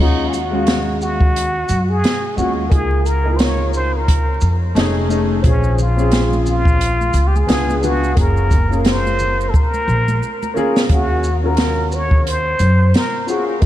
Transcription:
Already playing: grand piano G#3
0.00 upright bass D#2, grand piano C#4 F4 F#4, muted trumpet D#4
0.29 muted trumpet G#4
0.34 muted trumpet F#4, closed hi-hat, shaker
0.51 grand piano G#3 C#4 F#4 F5
0.67 snare, closed hi-hat
1.02 muted trumpet F#4, shaker
1.20 kick
1.36 closed hi-hat
1.69 upright bass F#2, closed hi-hat, shaker
1.90 muted trumpet G#4
2.04 snare, closed hi-hat
2.36 upright bass D#2, grand piano G#3 C#4 F4 F#4, muted trumpet F#4, shaker
2.70 upright bass C#2, grand piano A#3 D#4 F4 G#4, muted trumpet G#4, kick, closed hi-hat
3.06 muted trumpet A#4, closed hi-hat, shaker
3.24 grand piano A#3 D#4 E4 A#4
3.32 grand piano F4
3.36 muted trumpet C5, snare, closed hi-hat
3.41 muted trumpet C#5
3.74 muted trumpet C5, shaker
3.96 muted trumpet A#4
4.08 kick, closed hi-hat
4.41 upright bass F2, shaker
4.75 upright bass F1, grand piano A3 C#4 D#4 G#4, snare, closed hi-hat
5.08 grand piano A3 C#4 D#4 G#4, shaker
5.42 upright bass A#1, grand piano C#4 F4 G#4 C5, kick, closed hi-hat, maracas
5.48 muted trumpet C#4
5.64 maracas
5.79 muted trumpet F4, low conga, maracas, shaker
5.97 grand piano C4 C#4 F4 G#4, maracas
6.11 snare, closed hi-hat, maracas
6.33 high conga, maracas
6.46 muted trumpet F4, low conga, shaker, maracas
6.65 kick, maracas
6.81 closed hi-hat, maracas
7.01 high conga, maracas
7.14 upright bass C#2, closed hi-hat, shaker, maracas
7.27 muted trumpet G4
7.36 muted trumpet G#4, high conga, maracas
7.47 upright bass C#2, grand piano B3 D4 F4 G#4, snare, closed hi-hat, maracas
7.70 high conga, maracas
7.81 grand piano B3 D4 F4 B4, low conga, shaker, maracas
7.85 muted trumpet F#4
8.04 maracas
8.15 upright bass F#1, grand piano A#3 C#4 F4 G#4, kick, closed hi-hat, maracas
8.19 muted trumpet A#4
8.37 maracas
8.51 kick, closed hi-hat, low conga, shaker, maracas
8.68 grand piano A#3 C#4 F4 G#4
8.73 maracas
8.85 muted trumpet C5, snare, closed hi-hat, maracas
9.07 high conga, maracas
9.19 low conga, shaker, maracas
9.41 maracas
9.50 muted trumpet A4
9.54 muted trumpet A#4, kick, maracas
9.74 high conga, maracas
9.88 upright bass A#1, maracas
10.08 high conga, maracas
10.23 maracas
10.43 high conga, maracas
10.54 grand piano A#3 C#4 F4 G#4, low conga, maracas
10.76 snare, maracas
10.88 upright bass D#2, grand piano C#4 F#4 G#4 F5, muted trumpet F#4, kick, closed hi-hat
11.24 shaker
11.42 grand piano C#4 F4 F#4 A#4
11.46 muted trumpet A#4
11.57 snare, closed hi-hat
11.92 muted trumpet C#5, shaker
12.11 kick
12.27 muted trumpet C5, closed hi-hat
12.59 upright bass F#2, closed hi-hat, shaker
12.94 muted trumpet A#4, snare, closed hi-hat
13.26 grand piano C#4 F4 F#4 G#4, shaker
13.30 muted trumpet F#4
13.60 upright bass C#2, grand piano A#3 D#4 F4, kick, closed hi-hat

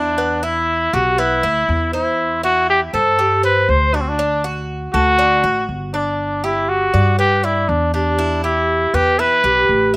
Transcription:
Already playing: upright bass E2, trumpet D4, cuban tres E4
0.18 cuban tres B3
0.43 cuban tres E4, trumpet E4
0.93 upright bass B1, trumpet F#4, cuban tres G4
1.18 cuban tres B3, trumpet E4
1.43 upright bass D2, cuban tres E4
1.69 upright bass E2
1.93 trumpet E4, cuban tres C5
2.43 cuban tres E4, trumpet F#4
2.70 trumpet G4
2.93 upright bass G2, trumpet A4, cuban tres C5
3.19 cuban tres G4
3.43 trumpet B4, cuban tres C5
3.69 upright bass D2, trumpet C5
3.94 trumpet D4, cuban tres F#4
4.01 trumpet C4
4.09 trumpet D4
4.19 cuban tres D4
4.44 cuban tres F#4
4.94 upright bass D2, trumpet F#4, cuban tres A4
5.19 cuban tres D4
5.44 upright bass A1, cuban tres F#4
5.69 upright bass G1
5.94 trumpet D4, cuban tres D5
6.44 trumpet E4, cuban tres G4
6.69 trumpet F#4
6.94 upright bass G2, cuban tres D5
7.19 trumpet G4, cuban tres B4
7.44 trumpet E4, cuban tres D5
7.69 upright bass E2, trumpet D4
7.94 trumpet D4, cuban tres G4
8.19 cuban tres E4
8.44 trumpet E4, cuban tres G4
8.94 upright bass E2, trumpet G4, cuban tres B4
9.19 cuban tres E4, trumpet B4
9.44 upright bass B1, cuban tres G4
9.69 upright bass A1
9.94 cuban tres E5

